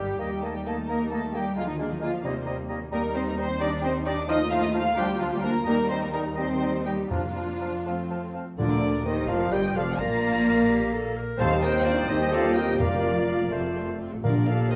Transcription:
Already playing: G1 G3 G4 G5
0.00 G4
0.19 D#2 D#3 G3 A#3 D#4 G4 D#5 G5 A#5
0.31 G3
0.42 A3 A#3 A4 D#5 A5 A#5
0.53 G3 G4 G5
0.65 D#3 A3 A#3 A4 D#5 A5 A#5
0.77 G3
0.88 A#3 A#4 D#5 A#5
1.00 G3
1.10 D#3 A3 A#3 A4 D#5 A5 A#5
1.24 G3
1.34 G3 A#3 G4 D#5 G5 A#5
1.45 G3
1.56 D2 D3 F3 G#3 A#3 F4 F5 A#5
1.68 D#3 F3 D#4 D#5
1.78 D3 G#3 A#3 D4 D5 F5 A#5
1.91 D#3 F3 D#4 D#5
2.01 D3 F3 G#3 A#3 F4 F5 A#5
2.13 F3
2.24 D#2 C3 D#3 G3 A#3 C4 C5 D#5 A#5
2.36 G3
2.46 D#3 G3 A#3 D#5 A#5
2.58 G3
2.69 D#3 G3 A#3 D#5 A#5
2.81 G3
2.91 D#2 G3 A#3 D#4 A#4 D#5 A#5
3.14 G3 C4 D#4 C5 D#5 A#5 C6
3.27 A#3 A#4 A#5
3.36 G3 C4 D#4 D#5 A#5
3.40 C5 C6
3.59 G3 D4 D#4 D5 D#5 G5 D6
3.81 G3 C4 D#4 C5 D#5 G5
3.85 C6
4.05 G3 D4 D#4 D5 D#5 G5 D6
4.27 F3 A3 D#4 F4 D#5 F5 A5 D#6
4.51 F3 D#4 F4 F5 A5 F6
4.63 D#4 D#5 D#6
4.73 F3 D#4 F4 F5 A5 F6
4.95 D2 F3 G3 A#3 D4 F4 G4 F5 G5 A#5
5.18 F3 D4 F4 F5 A#5
5.32 G3 G4 G5
5.41 F3 A#3 D4 A#4 F5 A#5
5.64 D#2 G3 A#3 D#4 A#4 D#5 A#5
5.89 G3 C4 D#4 C5 D#5 A#5 C6
6.02 A#3 A#4 A#5
6.12 G3 A#3 D#4 A#4 D#5 A#5
6.35 G3 C4 D#4 C5 D#5 G5 C6
6.61 G3 D#4 D#5 G5
6.85 G3 D#4 G4 D#5 G5
7.10 F2 F3 A#3 D4 F4 F5 A#5
7.35 F3 D4 F5 A#5
7.59 F3 D4 F5 A#5
7.85 F3 A3 C4 F5 A5
8.10 F3 C4 F5 A5
8.33 F3 C4 F5 A5
8.57 D2 A#2 D3 D4 F4 A#4 D5
9.04 D#2 D#3 D#4 G4 C5 D#5
9.27 F1 F2 F3 F4 A#4 D5 F5
9.52 G1 G2 G3 G4 A#4 D#5 G5
9.75 F1 F2 F3 F4 A4 D5 F5
9.99 A#1 A#2 A#3 A#4 D5 F5 A#5
10.69 G4
10.93 A4
11.16 A#4
11.38 D#2 D#3 C4 A4 C5 F5 A5
11.51 G3 D#4
11.62 D#3 C4 G4 A#4 D#5 G5
11.73 G3 D#4
11.84 D#3 C4 D4 F4 A#4 D5
11.96 G3 D#4
12.07 D#2 D#3 C4 D#4 G4 C5 D#5
12.19 G3 D#4
12.31 D#3 C4 F4 A4 D5 F5
12.44 G3 D#4
12.55 D#3 C4 G4 A#4 D#5 G5
12.67 G3 D#4
12.79 F1 F2 F3 A#3 D4 A#4 D5 F5
12.83 F4
12.92 A#3 F4
13.04 F3 D4
13.15 A#3 F4
13.27 F3 D4
13.40 A#3 F4
13.51 F1 F2 A3 C4 F4 C5
13.63 A3 A4
13.76 C4 F4
13.88 A3 A4
14.00 C4 F4
14.11 A3 A4
14.24 A#1 A#2 A#3 D4 F4 G4 A#4 D5 F5
14.46 A#3 F4 A4 D5 F5
14.70 A#3 D#4 G4 C5 D#5 F5

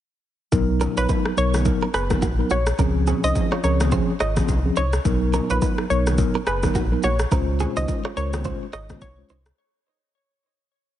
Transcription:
0.52 B1 F#3 B3 D#4 A#4, kick, low conga, shaker
0.81 C#4 A#4, low bongo, low conga, shaker
0.97 A#1 F4 B4 C#5, shaker
1.09 D#4 B4, kick, high bongo, shaker
1.26 cross-stick
1.37 B1 F#3 B3 D#4 A#4 C#5, shaker
1.54 cross-stick, low bongo, shaker
1.65 F#3 B3 D#4 A#4, kick, low conga, shaker
1.83 C#4 A#4
1.94 F#1 B3 G#4 B4, cross-stick, shaker
2.10 F#3 B3 D#4 A#4, kick, cross-stick, low bongo, shaker
2.22 A#1 A#3 F#4, kick, high bongo, shaker
2.38 F#3 B3 D#4 A#4
2.50 A#1 A#3 F#4 C#5, shaker
2.66 cross-stick, shaker
2.79 C#2 F3 C4 C#4 G#4 A#4, kick, low conga, shaker
3.07 C4 G#4, low bongo, low conga, shaker
3.23 C2 D#4 C5 D#5, shaker
3.35 kick, high bongo, shaker
3.52 F4 C#5, cross-stick
3.63 C#2 F3 C4 C#4 G#4 A#4 C#5, shaker
3.80 cross-stick, low bongo, shaker
3.91 F3 C4 C#4 F4 G#4 C5, kick, low conga, shaker
4.20 G#1 F4 C#5 D#5, cross-stick, shaker
4.36 F3 C4 C#4 G#4, kick, cross-stick, low bongo, shaker
4.48 C2, kick, high bongo, shaker
4.65 F3 C4 C#4 G#4
4.76 C2 D#4 C5 C#5, shaker
4.93 cross-stick, shaker
5.05 B1 F#3 B3 D#4 A#4, kick, low conga, shaker
5.33 C#4 A#4, low bongo, low conga, shaker
5.50 A#1 F4 B4 C#5, shaker
5.62 D#4 B4, kick, high bongo, shaker
5.78 cross-stick
5.90 B1 F#3 B3 D#4 A#4 C#5, shaker
6.07 cross-stick, low bongo, shaker
6.18 F#3 B3 D#4 A#4, kick, low conga, shaker
6.35 C#4 A#4
6.47 F#1 B3 G#4 B4, cross-stick, shaker
6.63 F#3 B3 D#4 A#4, kick, cross-stick, low bongo, shaker
6.75 A#1 A#3 F#4, kick, high bongo, shaker
6.91 F#3 B3 D#4 A#4
7.03 A#1 A#3 F#4 C#5, shaker
7.19 cross-stick, shaker
7.32 C#2 G#3 C#4 F4 A#4 C5, kick, low conga, shaker
7.60 C4 G#4, low bongo, low conga, shaker
7.76 C2 D#4 C5 D#5, low bongo, shaker
7.88 kick, high bongo, shaker
8.05 F4 C#5, cross-stick
8.16 C#2 G#3 C#4 F4 A#4 C5 C#5, shaker
8.33 cross-stick, low bongo, shaker
8.44 G#3 C#4 F4 C5, kick, low conga, shaker
8.73 G#1 F4 C#5 D#5, cross-stick, high bongo, shaker
8.89 G#3 C#4 F4 C5, kick, cross-stick, low bongo, shaker
9.01 C2 C#5, kick, high bongo, shaker
9.18 G#3 C#4 F4 C5
9.29 C2 D#4 C5, high bongo, shaker
9.46 cross-stick, shaker

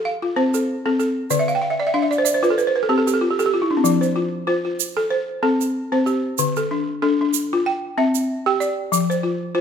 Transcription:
Already playing: A4
0.05 F5
0.22 F4
0.36 C4 C5
0.54 A4, shaker
0.86 C4 A4
1.00 A4, shaker
1.30 D3 D5, shaker
1.39 E5
1.48 F5, shaker
1.55 G5
1.62 F5
1.70 E5
1.80 D5
1.87 E5
1.94 D4 F5
2.02 E5
2.11 D5, shaker
2.18 C5
2.25 D5, shaker
2.34 C5
2.43 F4 B4, shaker
2.50 A4
2.58 B4, shaker
2.67 C5
2.76 B4
2.83 A4
2.89 C4 G4
2.98 A4
3.07 G4, shaker
3.14 A4
3.21 F4
3.31 G4
3.39 G4 A4, shaker
3.46 G4
3.54 F4
3.62 E4
3.71 D4
3.77 C4
3.84 F3, shaker
4.01 C5, shaker
4.16 F4
4.47 F4 C5
4.65 F4
4.80 shaker
4.97 A4
5.10 C5
5.43 C4 A4
5.61 shaker
5.92 C4 C5
6.06 G4, shaker
6.38 D3, shaker
6.56 A4, shaker
6.71 D4
7.02 D4 A4
7.21 D4
7.34 shaker
7.53 F4
7.66 G5
7.98 C4 E5
8.15 shaker
8.46 G4 G5
8.60 D5, shaker
8.92 F3, shaker
9.10 C5, shaker
9.23 F4
9.55 F4 C5

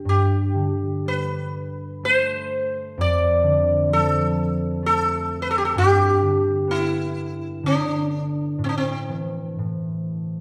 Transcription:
Already playing: B3 D4
0.05 G2
0.09 G4
0.55 D3
1.06 G3 B4
2.03 A3 C5
2.98 F2 D5
3.43 D3
3.89 F3 A4
4.83 A3 A4
5.42 B4
5.51 A4
5.58 G4
5.65 A4
5.75 G2 G4
6.22 D3
6.67 B3 E4
7.63 D3 D4
8.58 A2
8.64 C4
8.69 D4
8.78 C4
9.09 E3
9.58 A2

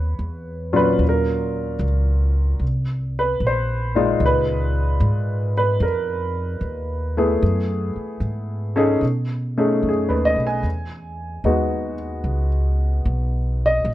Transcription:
Already playing: D#2 B4 C#5
0.19 E2
0.73 A#2 F#3 C#4 F4 B4
0.99 D#2
1.09 A#4
1.79 C#2
2.59 C2
3.19 B4
3.40 A#1
3.47 C5
3.95 A#2 G#3 D#4 F4
4.20 C#2
4.26 B4
5.00 G#2
5.57 B4
5.80 F2 A#4
6.61 D#2
7.17 A3 B3 E4 G#4
7.42 F#2
7.96 muted upright bass stroke
8.20 G#2
8.76 C#4 D#4 G#4 A4
9.01 B2
9.58 A3 C#4 D#4 G#4
9.83 F#2
9.89 G#4
10.09 D#2 B4
10.25 D#5
10.36 B1
10.47 G#5
10.63 E2
11.44 D#2 G#3 B3 D#4 F#4
12.24 C#2
13.05 B1
13.66 D#5
13.85 A#1

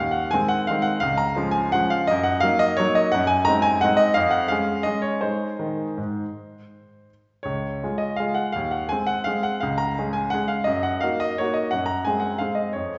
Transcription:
Already playing: D#2 F5
0.11 F#5
0.31 D#3 G#3 C4 G#5
0.48 F#5
0.67 D#3 G#3 C4 F5
0.82 F#5
1.00 C#2 F5
1.18 A#5
1.36 F3 G#3 C#4
1.51 G#5
1.72 F3 G#3 C#4 F#5
1.90 F5
2.07 F#2 D#5
2.23 F#5
2.40 F#3 A#3 D#4 F5
2.59 D#5
2.77 F#3 A#3 D#4 C#5
2.95 D#5
3.12 F#2 F#5
3.27 G#5
3.45 G#3 C4 D#4 A#5
3.62 G#5
3.81 G#3 C4 D#4 F#5
3.97 D#5
4.14 F2 F5
4.31 F#5
4.48 G#3 C#4 G#4 F5
4.83 G#3 C#4 G#4 D#5
5.02 C#5
5.21 G#3 D#4 G#4 C5
5.59 D#3
5.98 G#2
7.43 C#2 C#5
7.83 G#3 F4 G#4
7.98 D#5
8.16 G#3 F4 G#4 F5
8.34 F#5
8.52 D#2 F5
8.71 F#5
8.89 G#3 C4 G#4 G#5
9.07 F#5
9.24 G#3 C4 G#4 F5
9.43 F#5
9.60 C#2 F5
9.78 A#5
9.98 G#3 C#4 G#4
10.13 G#5
10.30 G#3 C#4 G#4 F#5
10.48 F5
10.64 F#2 D#5
10.83 F#5
11.01 A#3 D#4 F#4 F5
11.20 D#5
11.38 A#3 D#4 F#4 C#5
11.54 D#5
11.71 F#2 F#5
11.86 A#5
12.05 G#3 C4 G#4 G#5
12.20 F#5
12.38 G#3 C4 G#4 F5
12.55 D#5
12.73 F2 C#5

